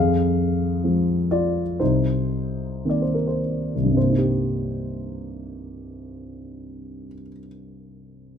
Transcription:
0, 0, Header, 1, 2, 480
1, 0, Start_track
1, 0, Key_signature, -3, "minor"
1, 0, Tempo, 906344
1, 444, Tempo, 967742
1, 924, Tempo, 1045296
1, 1404, Tempo, 1125704
1, 1879, Time_signature, 4, 2, 24, 8
1, 2364, Tempo, 1084991
1, 3814, End_track
2, 0, Start_track
2, 0, Title_t, "Grand piano"
2, 0, Program_c, 0, 0
2, 0, Note_on_c, 0, 41, 50
2, 0, Note_on_c, 0, 68, 49
2, 0, Note_on_c, 0, 77, 69
2, 61, Control_c, 0, 64, 127
2, 443, Note_on_c, 0, 53, 28
2, 443, Note_on_c, 0, 56, 25
2, 445, Note_on_c, 0, 60, 28
2, 661, Note_off_c, 0, 68, 0
2, 662, Note_off_c, 0, 77, 0
2, 678, Note_on_c, 0, 74, 60
2, 680, Note_on_c, 0, 65, 45
2, 828, Note_off_c, 0, 53, 0
2, 828, Note_off_c, 0, 56, 0
2, 829, Note_off_c, 0, 60, 0
2, 907, Note_off_c, 0, 41, 0
2, 907, Note_off_c, 0, 65, 0
2, 919, Note_on_c, 0, 72, 52
2, 920, Note_on_c, 0, 63, 42
2, 929, Note_on_c, 0, 36, 44
2, 930, Note_off_c, 0, 74, 0
2, 930, Control_c, 0, 64, 0
2, 1022, Control_c, 0, 64, 127
2, 1404, Note_on_c, 0, 51, 32
2, 1405, Note_on_c, 0, 58, 26
2, 1406, Note_on_c, 0, 60, 31
2, 1408, Note_off_c, 0, 72, 0
2, 1409, Note_off_c, 0, 63, 0
2, 1422, Note_on_c, 0, 74, 43
2, 1475, Note_on_c, 0, 72, 36
2, 1477, Note_off_c, 0, 74, 0
2, 1528, Note_on_c, 0, 70, 36
2, 1530, Note_off_c, 0, 72, 0
2, 1583, Note_off_c, 0, 70, 0
2, 1584, Note_on_c, 0, 72, 38
2, 1638, Note_off_c, 0, 72, 0
2, 1782, Note_off_c, 0, 36, 0
2, 1784, Note_off_c, 0, 51, 0
2, 1785, Note_off_c, 0, 58, 0
2, 1786, Note_off_c, 0, 60, 0
2, 1789, Note_on_c, 0, 36, 36
2, 1823, Note_on_c, 0, 43, 30
2, 1859, Note_on_c, 0, 48, 31
2, 1881, Note_on_c, 0, 72, 44
2, 1884, Control_c, 0, 64, 0
2, 1897, Note_on_c, 0, 58, 28
2, 1934, Note_on_c, 0, 63, 28
2, 1949, Control_c, 0, 64, 127
2, 1967, Note_on_c, 0, 67, 38
2, 3227, Note_off_c, 0, 36, 0
2, 3262, Note_off_c, 0, 43, 0
2, 3300, Note_off_c, 0, 48, 0
2, 3323, Note_off_c, 0, 72, 0
2, 3340, Note_off_c, 0, 58, 0
2, 3378, Note_off_c, 0, 63, 0
2, 3412, Note_off_c, 0, 67, 0
2, 3814, End_track
0, 0, End_of_file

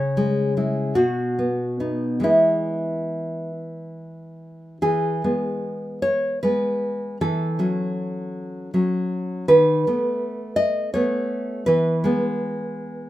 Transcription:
0, 0, Header, 1, 2, 480
1, 0, Start_track
1, 0, Key_signature, 4, "major"
1, 0, Tempo, 802139
1, 828, Tempo, 862069
1, 1305, Time_signature, 6, 3, 24, 8
1, 2748, Tempo, 796813
1, 3708, Tempo, 766284
1, 5628, Tempo, 732601
1, 7990, End_track
2, 0, Start_track
2, 0, Title_t, "Nylon-string guitar"
2, 0, Program_c, 0, 24
2, 0, Note_on_c, 0, 49, 46
2, 0, Note_on_c, 0, 73, 70
2, 102, Note_on_c, 0, 56, 41
2, 333, Note_off_c, 0, 56, 0
2, 340, Note_on_c, 0, 56, 27
2, 342, Note_on_c, 0, 64, 29
2, 550, Note_off_c, 0, 73, 0
2, 557, Note_off_c, 0, 49, 0
2, 557, Note_off_c, 0, 56, 0
2, 557, Note_off_c, 0, 64, 0
2, 569, Note_on_c, 0, 66, 56
2, 574, Note_on_c, 0, 47, 42
2, 829, Note_on_c, 0, 59, 29
2, 1053, Note_off_c, 0, 59, 0
2, 1059, Note_on_c, 0, 59, 32
2, 1061, Note_on_c, 0, 63, 32
2, 1278, Note_off_c, 0, 66, 0
2, 1280, Note_off_c, 0, 63, 0
2, 1281, Note_off_c, 0, 47, 0
2, 1281, Note_off_c, 0, 59, 0
2, 1281, Note_on_c, 0, 52, 40
2, 1288, Note_on_c, 0, 56, 29
2, 1301, Note_on_c, 0, 59, 30
2, 1304, Note_on_c, 0, 64, 46
2, 2009, Note_off_c, 0, 64, 0
2, 2712, Note_off_c, 0, 52, 0
2, 2716, Note_off_c, 0, 56, 0
2, 2722, Note_off_c, 0, 59, 0
2, 2742, Note_on_c, 0, 68, 54
2, 2744, Note_on_c, 0, 52, 43
2, 2978, Note_off_c, 0, 52, 0
2, 2995, Note_on_c, 0, 56, 33
2, 2996, Note_on_c, 0, 59, 35
2, 3441, Note_off_c, 0, 68, 0
2, 3465, Note_on_c, 0, 73, 57
2, 3686, Note_off_c, 0, 56, 0
2, 3686, Note_off_c, 0, 59, 0
2, 3695, Note_off_c, 0, 73, 0
2, 3709, Note_on_c, 0, 71, 50
2, 3713, Note_on_c, 0, 56, 31
2, 3720, Note_on_c, 0, 59, 34
2, 4172, Note_off_c, 0, 56, 0
2, 4176, Note_off_c, 0, 59, 0
2, 4176, Note_off_c, 0, 71, 0
2, 4200, Note_on_c, 0, 52, 44
2, 4201, Note_on_c, 0, 69, 57
2, 4430, Note_off_c, 0, 52, 0
2, 4437, Note_on_c, 0, 54, 32
2, 4441, Note_on_c, 0, 61, 42
2, 5134, Note_off_c, 0, 54, 0
2, 5136, Note_off_c, 0, 61, 0
2, 5156, Note_on_c, 0, 54, 33
2, 5160, Note_on_c, 0, 61, 35
2, 5373, Note_off_c, 0, 69, 0
2, 5600, Note_off_c, 0, 54, 0
2, 5602, Note_off_c, 0, 61, 0
2, 5623, Note_on_c, 0, 71, 68
2, 5626, Note_on_c, 0, 51, 46
2, 5856, Note_off_c, 0, 51, 0
2, 5878, Note_on_c, 0, 57, 35
2, 5880, Note_on_c, 0, 59, 37
2, 6311, Note_off_c, 0, 71, 0
2, 6329, Note_on_c, 0, 75, 65
2, 6560, Note_off_c, 0, 57, 0
2, 6561, Note_off_c, 0, 59, 0
2, 6564, Note_off_c, 0, 75, 0
2, 6575, Note_on_c, 0, 73, 65
2, 6583, Note_on_c, 0, 57, 35
2, 6585, Note_on_c, 0, 59, 38
2, 7036, Note_off_c, 0, 57, 0
2, 7036, Note_off_c, 0, 59, 0
2, 7039, Note_off_c, 0, 73, 0
2, 7050, Note_on_c, 0, 71, 63
2, 7060, Note_on_c, 0, 52, 46
2, 7296, Note_off_c, 0, 52, 0
2, 7297, Note_on_c, 0, 56, 41
2, 7306, Note_on_c, 0, 59, 43
2, 7990, Note_off_c, 0, 56, 0
2, 7990, Note_off_c, 0, 59, 0
2, 7990, Note_off_c, 0, 71, 0
2, 7990, End_track
0, 0, End_of_file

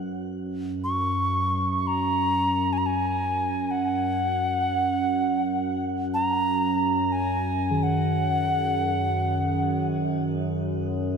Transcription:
0, 0, Header, 1, 4, 480
1, 0, Start_track
1, 0, Key_signature, 6, "major"
1, 0, Tempo, 500000
1, 10725, End_track
2, 0, Start_track
2, 0, Title_t, "Ocarina"
2, 0, Program_c, 0, 79
2, 806, Note_on_c, 0, 85, 84
2, 1716, Note_off_c, 0, 85, 0
2, 1716, Note_on_c, 0, 85, 55
2, 1797, Note_on_c, 0, 82, 87
2, 1811, Note_off_c, 0, 85, 0
2, 2619, Note_on_c, 0, 80, 76
2, 2633, Note_off_c, 0, 82, 0
2, 2666, Note_on_c, 0, 82, 62
2, 2680, Note_off_c, 0, 80, 0
2, 2747, Note_on_c, 0, 80, 80
2, 2761, Note_off_c, 0, 82, 0
2, 3560, Note_on_c, 0, 78, 90
2, 3575, Note_off_c, 0, 80, 0
2, 5630, Note_off_c, 0, 78, 0
2, 5893, Note_on_c, 0, 82, 98
2, 6837, Note_on_c, 0, 80, 76
2, 6851, Note_off_c, 0, 82, 0
2, 7519, Note_on_c, 0, 78, 79
2, 7533, Note_off_c, 0, 80, 0
2, 9473, Note_off_c, 0, 78, 0
2, 10725, End_track
3, 0, Start_track
3, 0, Title_t, "Singing bowl"
3, 0, Program_c, 1, 14
3, 0, Note_on_c, 1, 54, 59
3, 509, Note_off_c, 1, 54, 0
3, 7403, Note_on_c, 1, 51, 41
3, 10725, Note_off_c, 1, 51, 0
3, 10725, End_track
4, 0, Start_track
4, 0, Title_t, "Ambient pad"
4, 0, Program_c, 2, 92
4, 94, Note_on_c, 2, 42, 72
4, 10725, Note_off_c, 2, 42, 0
4, 10725, End_track
0, 0, End_of_file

